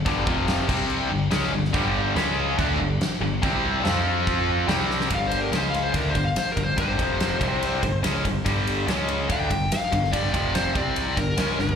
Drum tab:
CC |x---x-x-x---x---|x---x---x---x---|x---x---x---x---|----------------|
RD |----------------|----------------|----------------|x-x-x-x-x-x-x-x-|
SD |----o-------oo-o|----o-------o---|----o-------oooo|----o-------o---|
FT |----------------|----------------|----------------|----------------|
BD |o-o---o---------|o-------o-------|o-------o-------|o-------o-o---o-|

CC |----------------|----------------|----------------|
RD |x-x-x-x-x-x-x-x-|x-x-x-x-x-x-x-x-|x-x-x-x-x-x-x---|
SD |----o-------oo--|----o-------o--o|----o-------o-o-|
FT |----------------|----------------|---------------o|
BD |o-o---o---o---o-|o-------o-o---o-|o-o---o---o-----|